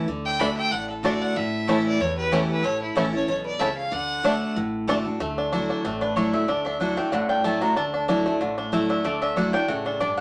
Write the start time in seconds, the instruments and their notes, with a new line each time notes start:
0.08 upright bass D2, steel-string acoustic guitar D3
0.25 resonator guitar played with a steel bar E5, fiddle G5
0.39 steel-string acoustic guitar D3 A3 D4 F#4, mandolin A3 F#4 D5 A5, five-string banjo A3 D4, resonator guitar played with a steel bar F#5, fiddle B5
0.57 resonator guitar played with a steel bar E5, fiddle G5
0.71 upright bass A1, steel-string acoustic guitar A2, resonator guitar played with a steel bar D5, fiddle F#5
0.90 fiddle A4, muted resonator guitar played with a steel bar stroke
1.03 steel-string acoustic guitar D3 A3 D4 F#4, mandolin A3 F#4 D5 A5, five-string banjo A3 D4, resonator guitar played with a steel bar A4, fiddle D5
1.21 resonator guitar played with a steel bar D5, fiddle F#5
1.36 upright bass A1, steel-string acoustic guitar A2, resonator guitar played with a steel bar C#5, fiddle E5
1.67 steel-string acoustic guitar E3 A3 C#4 E4, mandolin A3 E4 C#5 A5, five-string banjo A3 C#4 E4
1.85 resonator guitar played with a steel bar B4, fiddle D5
1.99 upright bass E2, steel-string acoustic guitar E2, resonator guitar played with a steel bar A4, fiddle C#5
2.17 resonator guitar played with a steel bar G4, fiddle B4
2.31 steel-string acoustic guitar E3 A3 C#4 E4, mandolin A3 E4 C#5 A5, five-string banjo A3 C#4 E4, resonator guitar played with a steel bar E4, fiddle G4
2.49 resonator guitar played with a steel bar G4, fiddle B4
2.63 upright bass A1, steel-string acoustic guitar A2, resonator guitar played with a steel bar A4, fiddle C#5
2.80 fiddle E4, muted resonator guitar played with a steel bar stroke
2.95 upright bass A1, steel-string acoustic guitar E3 A3 C#4 E4, mandolin A3 E4 C#5 A5, five-string banjo A3 C#4 E4, resonator guitar played with a steel bar E4, fiddle A4
3.12 steel-string acoustic guitar C#4 E4, resonator guitar played with a steel bar A4, fiddle C#5
3.27 upright bass B1, steel-string acoustic guitar B2, resonator guitar played with a steel bar A4, fiddle C#5
3.44 resonator guitar played with a steel bar B4, fiddle D5
3.59 upright bass C#2, steel-string acoustic guitar C#3, mandolin A3 E4 C#5 A5, five-string banjo A3 C#4 E4, resonator guitar played with a steel bar C#5, fiddle E5
3.77 resonator guitar played with a steel bar C#5, fiddle F5
3.91 upright bass D2, steel-string acoustic guitar D3, resonator guitar played with a steel bar D5, fiddle F#5
4.23 steel-string acoustic guitar D3 A3 D4 F#4, mandolin A3 F#4 D5 A5, five-string banjo A3 D4
4.56 upright bass A1, steel-string acoustic guitar A2
4.88 steel-string acoustic guitar D3 A3 D4 F#4, mandolin A3 F#4 D5 A5, five-string banjo A3 D4
5.05 steel-string acoustic guitar D4 F#4
5.20 upright bass D2, steel-string acoustic guitar D3, five-string banjo A3
5.38 five-string banjo D4
5.52 steel-string acoustic guitar F#3 A3 E4 F#4, five-string banjo D4
5.70 five-string banjo D4
5.84 upright bass A1, steel-string acoustic guitar A2, five-string banjo A3
6.01 five-string banjo D4, mandolin B4
6.16 steel-string acoustic guitar F#3 A3 E4 F#4, five-string banjo D4, mandolin C#5
6.33 five-string banjo A3, steel-string acoustic guitar E4 F#4, mandolin E5
6.48 upright bass D2, steel-string acoustic guitar D3, five-string banjo D4, mandolin D5
6.65 five-string banjo D4, mandolin E5
6.80 steel-string acoustic guitar F#3 A3 E4 F#4, five-string banjo D4, mandolin F#5
6.97 five-string banjo A3, steel-string acoustic guitar E4 F#4, mandolin G5
7.12 upright bass A1, steel-string acoustic guitar A2, five-string banjo D3, mandolin F#5
7.29 five-string banjo D4, mandolin G5
7.44 steel-string acoustic guitar F#3 A3 E4 F#4, five-string banjo A3, mandolin A5
7.61 five-string banjo D4, steel-string acoustic guitar E4 F#4, mandolin A#5
7.76 upright bass D2, steel-string acoustic guitar D3, five-string banjo D4, mandolin A5
7.94 five-string banjo D4
8.08 steel-string acoustic guitar F#3 A3 E4 F#4, five-string banjo D4
8.26 five-string banjo A3, steel-string acoustic guitar E4 F#4
8.41 upright bass A1, steel-string acoustic guitar A2, five-string banjo D3
8.58 five-string banjo D4
8.72 steel-string acoustic guitar F#3 A3 E4 F#4, five-string banjo A3
8.89 five-string banjo D4, mandolin E5
9.04 upright bass D2, steel-string acoustic guitar D3, five-string banjo A3, mandolin D5
9.22 five-string banjo D4, mandolin E5
9.36 steel-string acoustic guitar F#3 A3 E4 F#4, five-string banjo D4, mandolin F#5
9.53 five-string banjo D4, steel-string acoustic guitar E4 F#4, mandolin G5
9.68 upright bass A1, steel-string acoustic guitar C#3, five-string banjo A3, mandolin F#5
9.85 five-string banjo D4, mandolin A4
10.00 steel-string acoustic guitar G2, five-string banjo D4, mandolin D5
10.17 mandolin F#5